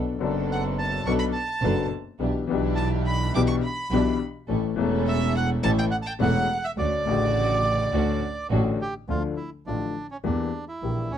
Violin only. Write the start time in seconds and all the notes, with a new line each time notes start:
0.52 F#5
0.81 A5
1.06 C#6
1.19 B5
1.33 A5
2.77 A5
3.07 B5
3.35 D6
3.47 C#6
3.62 B5
5.07 E5
5.36 F#5
5.63 A5
5.79 G5
5.92 F#5
6.03 G5 A5
6.20 F#5
6.65 E5
6.80 D5